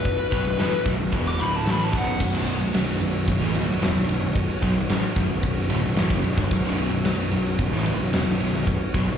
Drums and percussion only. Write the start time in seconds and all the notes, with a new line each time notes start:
0.05 kick, ride
0.32 kick, ride
0.59 snare, ride
0.86 kick, ride
1.12 kick, ride
1.39 ride
1.66 snare, ride
1.93 kick, ride
2.20 kick, crash
2.47 ride
2.74 snare, ride
3.01 ride
3.28 kick, ride
3.55 ride
3.82 snare, ride
4.09 ride
4.36 kick, ride
4.62 kick, ride
4.89 snare, ride
5.16 kick, ride
5.43 kick, ride
5.70 ride
5.96 snare, ride
6.10 kick
6.24 ride
6.38 kick
6.51 kick, ride
6.78 ride
7.05 snare, ride
7.31 ride
7.58 kick, ride
7.86 ride
8.13 snare, ride
8.40 ride
8.67 kick, ride
8.94 kick, ride